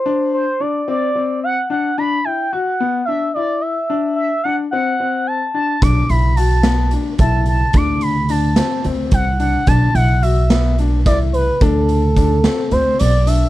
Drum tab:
HH |-------|-------|-------|xxxxxxx|
SD |-------|-------|-------|---o---|
BD |-------|-------|-------|o----o-|

HH |xxxxxxx|xxxxxxx|xxxxxxx|
SD |---o---|---o-o-|---o---|
BD |o----o-|o----o-|o-o----|